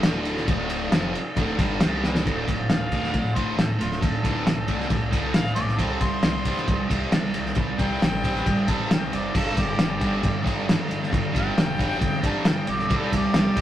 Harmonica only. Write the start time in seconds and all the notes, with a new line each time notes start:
2.69 F5
3.36 C5
3.57 A4
3.80 F4
4.01 A4
4.22 A4
5.34 F5
5.55 D5
5.79 A5
6.01 C6
7.81 G5
8.69 A5
8.93 G5
9.15 D5
9.37 A4
9.58 G4
11.39 G5
12.27 A5
12.50 G5
12.71 D5
12.96 A4
13.17 G4